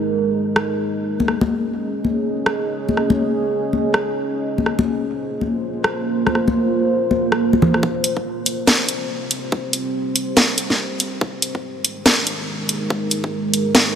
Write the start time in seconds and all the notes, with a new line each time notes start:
Already playing: G#3 D#4 A#4
0.56 cross-stick
1.07 C#4 G#4 D#5
1.20 high conga
1.28 cross-stick
1.41 high conga
2.05 high conga
2.46 cross-stick
2.89 high conga
2.97 cross-stick
3.10 high conga
3.73 high conga
3.94 cross-stick
4.45 A#3 F4 C5
4.58 high conga
4.66 cross-stick
4.79 high conga
5.41 high conga
5.84 cross-stick
6.27 cross-stick, high conga
6.35 cross-stick
6.48 high conga
7.11 high conga
7.32 cross-stick
7.53 high conga
7.62 low conga
7.74 cross-stick
7.83 C4 G4 C5, kick
8.04 closed hi-hat
8.17 kick
8.46 closed hi-hat
8.67 snare
8.89 closed hi-hat
9.31 closed hi-hat
9.52 kick
9.73 closed hi-hat
10.16 closed hi-hat
10.37 snare
10.58 closed hi-hat
10.70 snare
11.00 closed hi-hat
11.21 G#3 D#4 A#4, kick
11.42 closed hi-hat
11.55 kick
11.85 closed hi-hat
12.06 snare
12.27 closed hi-hat
12.69 closed hi-hat
12.90 kick
13.11 closed hi-hat
13.24 kick
13.54 closed hi-hat
13.75 snare